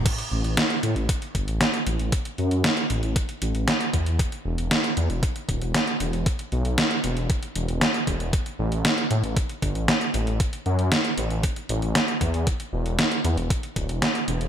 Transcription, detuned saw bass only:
X:1
M:4/4
L:1/16
Q:1/4=116
K:Ador
V:1 name="Detuned saw bass" clef=bass
z2 A,,, A,,, z2 A,, A,,, z2 G,,, A,,, z2 A,,, A,,, | z2 F,, F,, z2 A,,, A,,, z2 A,,, A,,, z2 E,, E,, | z2 E,,, E,,, z2 E,, E,,, z2 D,,, E,,, z2 E,,, E,,, | z2 B,,, B,,, z2 E,,, E,,, z2 E,,, E,,, z2 E,,, E,,, |
z2 A,,, A,,, z2 A,, A,,, z2 G,,, A,,, z2 A,,, A,,, | z2 F,, F,, z2 A,,, A,,, z2 A,,, A,,, z2 E,, E,, | z2 E,,, E,,, z2 E,, E,,, z2 D,,, E,,, z2 E,,, E,,, |]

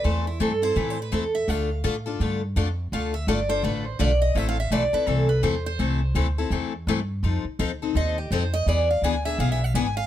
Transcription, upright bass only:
X:1
M:4/4
L:1/8
Q:"Swing" 1/4=167
K:Am
V:1 name="Upright bass" clef=bass
E,,2 G,,2 A,,2 E,,2 | D,,2 A,,2 G,,2 F,,2 | D,,2 G,,,2 A,,,2 B,,,2 | A,,,2 B,,, z C,,2 E,,2 |
C,,2 D,,2 E,,2 G,,2 | F,, z D,,2 _E,,2 F,,2 | E,,2 D,,2 B,,,2 ^G,,,2 |]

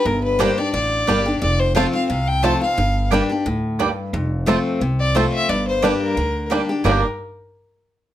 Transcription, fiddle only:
X:1
M:4/4
L:1/8
Q:"Swing" 1/4=177
K:Gm
V:1 name="Fiddle"
B =B c d d4 | d c f f f g a f- | f2 z6 | z4 z d c =e |
d c =B _B3 z2 | B z6 z |]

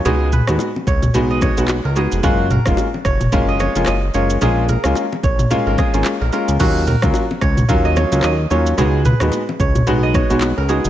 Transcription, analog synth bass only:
X:1
M:4/4
L:1/16
Q:"Swing 16ths" 1/4=110
K:Ebm
V:1 name="Analog synth bass" clef=bass
D,,3 E,, z2 D,,2 C,,3 C,,2 D,,2 F,,, | G,,,3 F,,, z2 F,,,2 G,,,3 F,,, G,,,2 G,,,2 | B,,,3 D,, z2 B,,,2 z A,,, z A,,, z B,,, z D,, | E,,3 D,, z2 D,,2 E,,3 D,, E,,2 E,,2 |
D,,3 E,, z2 D,,2 C,,3 C,,2 D,,2 F,,, |]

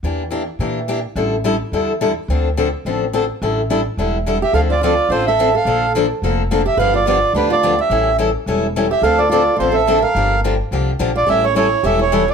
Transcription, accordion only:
X:1
M:4/4
L:1/8
Q:"Swing" 1/4=214
K:Dm
V:1 name="Accordion"
z8 | z8 | z8 | z6 z e |
f d d2 c e2 f- | f2 z4 z e | f d d2 =B d2 e- | e2 z4 z e |
f d d2 c e2 f- | f2 z4 z d | e ^c c2 e c2 d |]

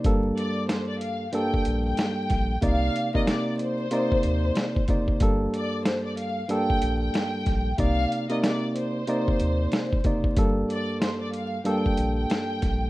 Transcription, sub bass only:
X:1
M:4/4
L:1/8
Q:"Swing 16ths" 1/4=93
K:Gm
V:1 name="Sub bass" clef=bass
G,,, z4 B,,, z B,,, | C,, z4 E,, z ^F,,, | G,,, z4 B,,, z B,,, | C,, z4 E,, z ^F,,, |
G,,, z4 B,,, z B,,, |]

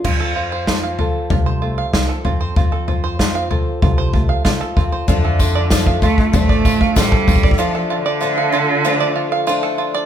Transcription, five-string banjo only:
X:1
M:4/4
L:1/16
Q:1/4=96
K:F
V:1 name="Five-string banjo"
F A F c F f F2 F c F f F A F c | F A F c F f F2 F c F f F A F c | F A F d F f F2 F d F f F A F d | F A F d F f F2 F d F f F A F d |]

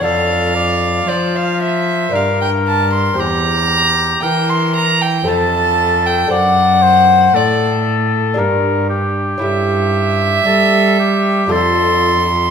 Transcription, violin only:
X:1
M:3/4
L:1/16
Q:1/4=57
K:Dm
V:1 name="Violin"
f4 d f e2 f g a c' | b4 g c' b g a3 g | ^f4 d2 z6 | e8 c'4 |]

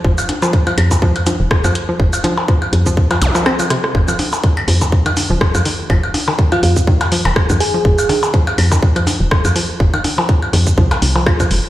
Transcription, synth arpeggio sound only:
X:1
M:4/4
L:1/16
Q:"Swing 16ths" 1/4=123
K:Fm
V:1 name="Synth arpeggio sound" clef=bass
F, z2 F, z F, z2 F, z F, z2 F, z F, | z2 F, z F, z2 F, z F, z F, C F, C, z | z F, z2 E, z F, z2 E, z F, z2 E, z | F, z2 E, z F, z2 E, z F, z2 E, z F, |
z2 E, z F, z2 E, z F, z2 E, z F, z | z E, z F, z2 E, z F, z2 F, F F, z2 |]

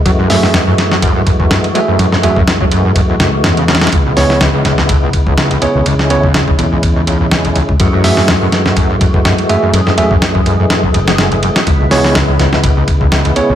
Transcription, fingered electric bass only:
X:1
M:4/4
L:1/16
Q:"Swing 16ths" 1/4=124
K:F#dor
V:1 name="Fingered electric bass" clef=bass
F,,12- F,, z3 | F,,8- F,,2 C,,2 E,,3 z | C,,12- C,, z2 C,, | C,,4- C,, z E,,8 z C,, |
F,,12- F,, z3 | F,,8- F,,2 F,,,4 z2 | C,,12- C,, z2 C,, |]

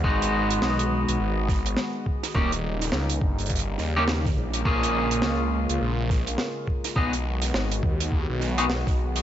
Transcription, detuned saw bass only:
X:1
M:4/4
L:1/16
Q:"Swing 16ths" 1/4=104
K:G#dor
V:1 name="Detuned saw bass" clef=bass
G,,,4 B,,,3 B,,, G,,,4 z4 | D,,,4 C,,2 =G,,,4 D,,4 A,,,2 | A,,,4 C,,3 C,, A,,,4 z4 | B,,,4 G,,,2 D,,3 B,,,4 B,,,3 |]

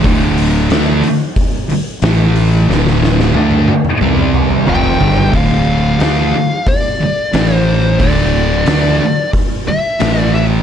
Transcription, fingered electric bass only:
X:1
M:4/4
L:1/8
Q:1/4=90
K:Dm
V:1 name="Fingered electric bass" clef=bass
D,,,2 D,, z3 A,,,2 | D,,,2 D,, z C,,2 F,,, G,,, | D,,,2 D,, z3 A,,,2 | D,,,2 D,, z3 A,,,2 |]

